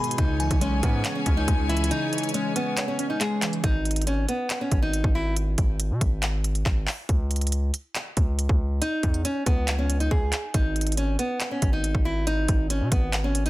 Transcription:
Already playing: synth keys G#2 B2 D#3 G#3 B3, string section B3 G#4 D#5 G#5, nylon-string guitar G#4, synth bell B5
0.04 closed hi-hat
0.11 closed hi-hat
0.18 808-style bass C#2, synth keys C#3, string section C#4 G#4 C#5 G#5, nylon-string guitar D#4, kick, closed hi-hat
0.40 synth keys E3, synth bell G#5, closed hi-hat
0.51 808-style bass B1, kick, closed hi-hat
0.61 synth keys G#3, nylon-string guitar C#4, closed hi-hat
0.83 808-style bass G#2, nylon-string guitar B3, synth keys C#4, kick, closed hi-hat
1.05 synth keys C#5, clap, closed hi-hat
1.15 nylon-string guitar C#4
1.26 808-style bass C#2, synth keys C#4, kick, closed hi-hat
1.37 nylon-string guitar D#4
1.48 808-style bass C#2, synth keys G#3, kick, closed hi-hat
1.69 synth keys E3, nylon-string guitar E4, closed hi-hat
1.77 closed hi-hat
1.84 closed hi-hat
1.91 synth keys C#3, nylon-string guitar D#4, closed hi-hat
2.13 synth keys E3, closed hi-hat
2.18 closed hi-hat
2.23 closed hi-hat
2.29 closed hi-hat
2.34 synth keys G#3, nylon-string guitar C#4, closed hi-hat
2.56 nylon-string guitar B3, synth keys C#4, closed hi-hat
2.77 synth keys C#5, clap, closed hi-hat
2.88 nylon-string guitar C#4
2.99 synth keys C#4, closed hi-hat
3.10 nylon-string guitar D#4
3.20 synth keys G#3, nylon-string guitar G#4, clap, closed hi-hat
3.42 synth keys E3, clap, closed hi-hat, open hi-hat
3.53 closed hi-hat
3.64 808-style bass G#1, nylon-string guitar D#4, kick, closed hi-hat
3.85 closed hi-hat
3.91 closed hi-hat
3.96 closed hi-hat
4.02 closed hi-hat
4.07 nylon-string guitar C#4, closed hi-hat
4.29 nylon-string guitar B3, closed hi-hat
4.50 clap, closed hi-hat
4.61 nylon-string guitar C#4
4.72 808-style bass G#1, kick, closed hi-hat
4.82 nylon-string guitar D#4
4.93 closed hi-hat
5.04 808-style bass G#1, kick
5.15 nylon-string guitar E4
5.37 closed hi-hat
5.58 808-style bass G#1, kick, closed hi-hat
5.80 closed hi-hat
5.90 808-style bass B2
6.01 808-style bass G#1, kick, closed hi-hat
6.23 clap, closed hi-hat
6.44 closed hi-hat
6.55 closed hi-hat
6.66 808-style bass G#1, kick, clap
6.87 clap, open hi-hat
7.09 808-style bass C#2, kick, closed hi-hat
7.31 closed hi-hat
7.36 closed hi-hat
7.41 closed hi-hat
7.47 closed hi-hat
7.52 closed hi-hat
7.74 closed hi-hat
7.95 clap, closed hi-hat
8.17 808-style bass C#2, kick, closed hi-hat
8.39 closed hi-hat
8.49 808-style bass C#2, kick
8.82 nylon-string guitar D#4, closed hi-hat
9.03 808-style bass E2, kick, closed hi-hat
9.14 closed hi-hat
9.25 nylon-string guitar C#4, closed hi-hat
9.46 808-style bass C#2, nylon-string guitar B3, kick, closed hi-hat
9.68 clap, closed hi-hat
9.79 nylon-string guitar C#4
9.90 closed hi-hat
10.00 nylon-string guitar D#4, closed hi-hat
10.11 808-style bass C#2, nylon-string guitar G#4, kick
10.32 clap, closed hi-hat
10.54 808-style bass G#1, nylon-string guitar D#4, kick, closed hi-hat
10.76 closed hi-hat
10.81 closed hi-hat
10.87 closed hi-hat
10.92 closed hi-hat
10.97 nylon-string guitar C#4, closed hi-hat
11.19 nylon-string guitar B3, closed hi-hat
11.40 clap, closed hi-hat
11.51 nylon-string guitar C#4
11.62 808-style bass G#1, kick, closed hi-hat
11.73 nylon-string guitar D#4
11.84 closed hi-hat
11.95 808-style bass G#1, kick
12.05 nylon-string guitar E4
12.27 nylon-string guitar D#4, closed hi-hat
12.48 808-style bass G#1, kick, closed hi-hat
12.70 nylon-string guitar C#4, closed hi-hat
12.81 808-style bass B2
12.92 808-style bass G#1, nylon-string guitar B3, kick, closed hi-hat
13.13 clap, closed hi-hat
13.24 nylon-string guitar C#4
13.35 closed hi-hat
13.46 nylon-string guitar D#4, closed hi-hat

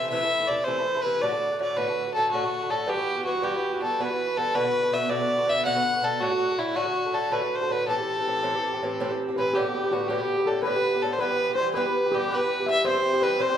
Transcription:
Already playing: bouzouki E3 A3 E4
0.10 bouzouki C3 E3 A3 E4, fiddle E5
0.22 bouzouki E3 A3 E4
0.40 bouzouki E3 A3 E4
0.48 bouzouki C3 E3 A3, fiddle D5
0.52 bouzouki E4
0.64 bouzouki C3 E3 A3, fiddle C5
0.68 bouzouki E4
0.78 bouzouki E3 A3 E4
0.95 bouzouki E3 A3 E4
1.02 bouzouki C3 E3, fiddle B4
1.06 bouzouki A3 E4
1.21 bouzouki A2 D3 A3 F#4, fiddle D5
1.32 bouzouki D3 A3 F#4
1.51 bouzouki D3 A3 F#4
1.59 bouzouki A2 D3 A3 F#4, fiddle D5
1.76 bouzouki A2 D3 A3 F#4, fiddle B4
1.88 bouzouki D3 A3 F#4
2.07 bouzouki D3 A3 F#4
2.14 bouzouki A2 D3 A3 F#4, fiddle A4
2.31 bouzouki A2 D3 A3 F#4, fiddle F#4
2.44 bouzouki D3 A3 F#4
2.61 bouzouki D3 A3 F#4
2.70 bouzouki A2 D3 A3 F#4, fiddle A4
2.86 bouzouki G2 E3 B3 F#4, fiddle G4
2.97 bouzouki E3 B3 F#4
3.15 bouzouki E3 B3 F#4
3.25 bouzouki G2 E3 B3 F#4, fiddle F#4
3.42 bouzouki G2 E3 B3 F#4, fiddle G4
3.54 bouzouki E3 B3 F#4
3.73 bouzouki E3 B3 F#4
3.81 bouzouki G2 E3 B3 F#4, fiddle A4
4.00 bouzouki G2 E3 B3 F#4, fiddle B4
4.10 bouzouki E3 B3 F#4
4.26 bouzouki E3 B3 F#4
4.37 bouzouki G2 E3 B3 F#4, fiddle A4
4.55 bouzouki B2 D3 B3 F#4, fiddle B4
4.65 bouzouki D3 B3 F#4
4.82 bouzouki D3 B3 F#4
4.91 bouzouki B2 D3 B3 F#4, fiddle E5
5.09 bouzouki B2 D3 B3 F#4, fiddle D5
5.19 bouzouki D3 B3 F#4
5.37 bouzouki D3 B3 F#4
5.46 bouzouki B2 D3 B3 F#4, fiddle E5
5.65 bouzouki B2 D3 B3 F#4, fiddle F#5
5.75 bouzouki D3 B3 F#4
5.94 bouzouki D3 B3 F#4
6.02 bouzouki B2 D3 B3 F#4, fiddle A4
6.20 bouzouki A2 D3 A3 F#4, fiddle F#4
6.31 bouzouki D3 A3 F#4
6.49 bouzouki D3 A3 F#4
6.58 bouzouki A2 D3 A3 F#4, fiddle E4
6.75 bouzouki A2 D3 A3 F#4, fiddle F#4
6.85 bouzouki D3 A3 F#4
7.04 bouzouki D3 A3 F#4
7.12 bouzouki A2 D3 A3 F#4, fiddle A4
7.30 bouzouki A2 D3 A3 F#4, fiddle B4
7.41 bouzouki D3 A3 F#4
7.55 fiddle C5
7.61 bouzouki D3 A3 F#4
7.69 bouzouki A2 D3 A3 F#4, fiddle B4
7.88 bouzouki A2 E3 C4 G4, fiddle A4
7.99 bouzouki E3 C4 G4
8.17 bouzouki E3 C4 G4
8.27 bouzouki A2 E3 C4 G4
8.43 bouzouki A2 E3 C4 G4
8.55 bouzouki E3 C4 G4
8.73 bouzouki E3 C4 G4
8.82 bouzouki A2 E3 C4 G4
9.00 bouzouki A2 E3 C4 G4
9.10 bouzouki E3 C4 G4
9.28 bouzouki E3 C4 G4
9.36 bouzouki A2 E3 C4 G4, steel pan B4, fiddle B4
9.53 bouzouki A2 D3 B3 G4, steel pan G4, fiddle G4
9.65 bouzouki D3 B3 G4
9.75 steel pan G4
9.84 bouzouki D3 B3 G4
9.91 bouzouki A2 D3 B3 G4, steel pan F#4, fiddle F#4
10.08 bouzouki A2 D3 B3 G4, fiddle G4, steel pan G4
10.19 bouzouki D3 B3 G4
10.37 bouzouki D3 B3 G4
10.46 bouzouki A2 D3 B3 G4, steel pan A4, fiddle A4
10.63 bouzouki A2 D3 B3 G4, steel pan B4, fiddle B4
10.76 bouzouki D3 B3 G4
10.94 bouzouki D3 B3 G4
11.02 bouzouki A2 D3 B3 G4, fiddle A4
11.12 fiddle C5
11.19 bouzouki G2 E3 B3, steel pan B4, fiddle B4
11.23 bouzouki G4
11.31 bouzouki E3 B3 G4
11.49 bouzouki E3 B3 G4
11.55 fiddle C5, steel pan C5
11.59 bouzouki G2 E3 B3 G4
11.74 bouzouki G2 E3 B3 G4, steel pan B4, fiddle B4
11.86 bouzouki E3 B3 G4
12.05 bouzouki E3 B3 G4
12.12 bouzouki G2 E3, steel pan G4, fiddle G4
12.16 bouzouki B3 G4
12.28 bouzouki G2 E3 B3, steel pan B4
12.33 bouzouki G4, fiddle B4
12.41 bouzouki E3 B3 G4
12.59 bouzouki E3 B3 G4
12.66 bouzouki G2 E3 B3 G4, steel pan E5, fiddle E5
12.85 bouzouki G2 E3 C4 G4, steel pan C5, fiddle C5
12.95 bouzouki E3 C4 G4
13.13 bouzouki E3 C4 G4
13.21 bouzouki G2 E3 C4 G4, steel pan B4, fiddle B4
13.39 bouzouki G2 E3 C4 G4, steel pan C5, fiddle C5
13.49 bouzouki E3 C4 G4
13.54 steel pan D5

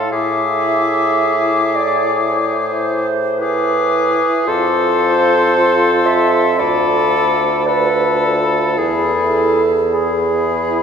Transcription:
Already playing: clarinet F5
0.12 bassoon A2, french horn E4, oboe G#4, clarinet E5, flute D6
1.76 clarinet D5
2.31 clarinet C5
3.39 french horn E4, oboe G#4, clarinet B4, flute D6
4.46 bassoon F2, french horn F4, oboe A4, clarinet C5, flute C6
6.06 clarinet E5
6.59 bassoon D2, french horn F4, oboe A4, clarinet D5, flute B5
7.67 french horn F4, oboe A4, clarinet B4, flute B5
8.78 bassoon E2, french horn E4, oboe G#4, clarinet A4, flute B5
9.92 french horn E4, oboe G#4, clarinet G#4, flute B5

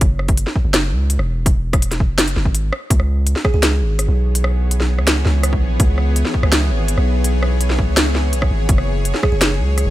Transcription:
0.01 808-style bass F#1, kick, closed hi-hat
0.19 cross-stick
0.28 kick, closed hi-hat
0.37 closed hi-hat
0.47 snare
0.56 kick
0.65 808-style bass F#1
0.74 cross-stick, snare, closed hi-hat
0.92 808-style bass C#2
1.10 closed hi-hat
1.19 808-style bass E1, cross-stick
1.46 kick, closed hi-hat
1.73 kick, cross-stick, closed hi-hat
1.82 closed hi-hat
1.92 snare, closed hi-hat
2.00 kick
2.09 808-style bass F#1
2.18 cross-stick, snare, closed hi-hat
2.28 closed hi-hat
2.36 808-style bass F#1, snare
2.45 808-style bass G#1, kick
2.55 closed hi-hat
2.73 cross-stick
2.90 808-style bass C#2, synth drone E3, kick, closed hi-hat
3.00 synth drone C#5, cross-stick
3.12 synth drone B3
3.26 synth drone G#4, closed hi-hat
3.36 snare
3.45 kalimba G#4, kick, cross-stick
3.54 808-style bass C#2, kalimba G#4
3.63 snare, closed hi-hat
3.81 808-style bass G#1
3.99 cross-stick, closed hi-hat
4.08 808-style bass B1
4.35 closed hi-hat
4.44 cross-stick
4.71 closed hi-hat
4.80 snare
4.99 808-style bass C#2, cross-stick
5.07 snare, closed hi-hat
5.25 808-style bass C#2, snare
5.43 cross-stick, closed hi-hat
5.53 kick
5.62 808-style bass A#1
5.80 808-style bass C#2, kick, closed hi-hat
5.98 cross-stick
6.16 closed hi-hat
6.25 snare
6.34 kick
6.43 808-style bass C#2, cross-stick
6.52 snare, closed hi-hat
6.70 808-style bass G#1
6.88 closed hi-hat
6.98 808-style bass B1, cross-stick
7.24 closed hi-hat
7.43 cross-stick
7.61 closed hi-hat
7.70 snare
7.79 kick
7.88 808-style bass C#2
7.97 cross-stick, snare, closed hi-hat
8.15 snare
8.33 808-style bass B1, closed hi-hat
8.42 kick, cross-stick
8.51 808-style bass G#1
8.68 808-style bass F#1, synth drone F#3, kick, closed hi-hat
8.78 cross-stick
8.97 synth drone A#3
9.05 closed hi-hat
9.14 snare
9.23 kalimba G#4, kick, cross-stick
9.32 808-style bass F#1, kalimba G#4
9.41 snare, closed hi-hat
9.59 808-style bass C#2
9.78 cross-stick, closed hi-hat
9.86 808-style bass E1

